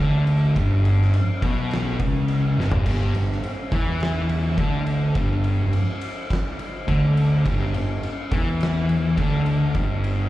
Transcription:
0.00 picked electric bass D2, distorted electric guitar D3
0.27 ride
0.56 picked electric bass G1, distorted electric guitar G2, kick, ride
0.85 ride
1.02 snare
1.13 ride
1.42 picked electric bass B1, distorted electric guitar B2, kick, ride
1.71 snare, ride
1.99 picked electric bass C#2, distorted electric guitar C#3, kick, ride
2.28 ride
2.57 picked electric bass G1, distorted electric guitar G2, snare
2.72 floor tom
2.86 picked electric bass G1, distorted electric guitar G2, kick, splash, crash
3.14 picked electric bass G1, distorted electric guitar G2, ride
3.32 snare
3.43 ride
3.72 picked electric bass E2, distorted electric guitar E3, kick, ride
4.00 snare, ride
4.29 ride
4.58 picked electric bass D2, distorted electric guitar D3, kick, ride
4.86 ride
5.15 picked electric bass G1, distorted electric guitar G2, kick, ride
5.44 ride
5.73 ride
6.01 ride
6.30 kick, snare, ride
6.59 ride
6.88 picked electric bass D2, distorted electric guitar D3, kick, ride
7.17 ride
7.45 picked electric bass G1, distorted electric guitar G2, kick, ride
7.74 picked electric bass G1, distorted electric guitar G2, ride
8.03 ride
8.32 picked electric bass E2, distorted electric guitar E3, kick, ride
8.60 snare, ride
8.89 ride
9.17 picked electric bass D2, distorted electric guitar D3, kick, ride
9.46 ride
9.74 picked electric bass G1, distorted electric guitar G2, kick, ride
10.04 ride

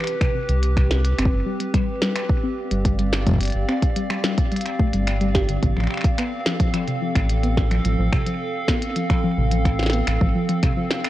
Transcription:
Already playing: ambient pad C4 G4 B4
0.00 finger snap
0.04 finger snap, closed hi-hat
0.21 synth arpeggio sound C3, finger snap, kick, closed hi-hat
0.35 synth arpeggio sound C3
0.49 analog synth bass C2, synth arpeggio sound C3, closed hi-hat
0.63 closed hi-hat
0.77 synth arpeggio sound C3, finger snap, kick, closed hi-hat
0.91 snare
1.04 closed hi-hat
1.18 analog synth bass G1, synth arpeggio sound C4, finger snap, closed hi-hat
1.25 kick
1.32 analog synth bass G1
1.46 synth arpeggio sound G3
1.60 synth arpeggio sound G3, closed hi-hat
1.74 synth arpeggio sound G3, finger snap, kick, closed hi-hat
2.02 synth arpeggio sound G3, snare
2.16 finger snap, closed hi-hat
2.24 ambient pad D5
2.29 kick
2.43 synth arpeggio sound C4, ambient pad F5
2.71 analog synth bass G1, synth arpeggio sound G3, closed hi-hat
2.85 synth arpeggio sound G3, kick, closed hi-hat
2.99 synth arpeggio sound G3, closed hi-hat
3.13 finger snap, snare
3.27 synth arpeggio sound G3, kick, closed hi-hat
3.29 kick
3.31 kick
3.34 kick
3.36 kick
3.38 analog synth bass G1, kick, closed hi-hat
3.43 closed hi-hat
3.45 closed hi-hat
3.47 closed hi-hat
3.50 closed hi-hat
3.52 analog synth bass G1, closed hi-hat
3.68 synth arpeggio sound C4, finger snap
3.82 kick, closed hi-hat
3.96 synth arpeggio sound G3, closed hi-hat
4.10 synth arpeggio sound G3, finger snap
4.24 synth arpeggio sound G3, snare
4.38 kick, closed hi-hat
4.52 synth arpeggio sound G3, closed hi-hat
4.56 closed hi-hat
4.61 closed hi-hat
4.66 finger snap, closed hi-hat
4.79 synth arpeggio sound A3, kick
4.93 analog synth bass G1, synth arpeggio sound G3, closed hi-hat
5.07 finger snap, closed hi-hat
5.21 synth arpeggio sound G3, closed hi-hat
5.35 synth arpeggio sound G4, kick, snare
5.49 synth arpeggio sound D3, closed hi-hat
5.63 analog synth bass A1, synth arpeggio sound C3, kick, closed hi-hat
5.77 analog synth bass A1, synth arpeggio sound F3, finger snap
5.80 ambient pad A4, finger snap
5.84 finger snap
5.87 finger snap
5.91 finger snap
5.94 finger snap
5.97 finger snap
6.01 finger snap, kick, closed hi-hat
6.18 synth arpeggio sound B3, finger snap, closed hi-hat
6.46 synth arpeggio sound F3, snare
6.60 synth arpeggio sound F3, kick, closed hi-hat
6.74 synth arpeggio sound F3, finger snap, closed hi-hat
6.88 synth arpeggio sound C3, closed hi-hat
7.02 synth arpeggio sound F3
7.16 analog synth bass A1, finger snap, kick, closed hi-hat
7.29 closed hi-hat
7.43 synth arpeggio sound B3, closed hi-hat
7.57 kick, snare
7.71 synth arpeggio sound F3, finger snap, closed hi-hat
7.85 analog synth bass A1, synth arpeggio sound F3, closed hi-hat
7.99 analog synth bass A1, synth arpeggio sound F3
8.13 synth arpeggio sound C3, finger snap, kick
8.27 synth arpeggio sound F3, closed hi-hat
8.68 synth arpeggio sound B3, finger snap, kick, snare
8.82 closed hi-hat
8.96 synth arpeggio sound F3, closed hi-hat
9.10 synth arpeggio sound F3, finger snap, kick, closed hi-hat
9.24 synth arpeggio sound F3
9.38 analog synth bass A1, synth arpeggio sound C3
9.52 synth arpeggio sound F3, closed hi-hat
9.66 finger snap, kick, closed hi-hat
9.79 snare
9.83 snare
9.86 snare
9.90 synth arpeggio sound B3, snare, closed hi-hat
10.07 analog synth bass A1, finger snap, closed hi-hat
10.21 analog synth bass A1, synth arpeggio sound F3, kick
10.35 synth arpeggio sound F3
10.49 synth arpeggio sound F3, closed hi-hat
10.63 synth arpeggio sound C3, finger snap, kick, closed hi-hat
10.77 synth arpeggio sound F3
10.91 snare
11.04 finger snap, closed hi-hat

